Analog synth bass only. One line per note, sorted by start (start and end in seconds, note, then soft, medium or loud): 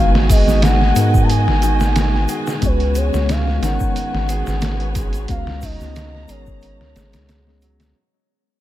0.00 0.44 G#1 medium
0.47 0.93 G#1 medium
0.96 1.49 G#2 medium
1.48 2.26 G#1 medium
2.62 3.10 C#2 loud
3.14 3.60 C#2 loud
3.61 3.78 G#1 medium
4.14 4.43 G#1 medium
4.47 5.26 G#1 loud
5.29 5.77 C#2 loud
5.80 6.26 C#2 loud
6.29 6.81 G#1 medium
6.80 6.95 C#2 medium
6.96 7.16 G#1 medium
7.15 7.93 C#2 medium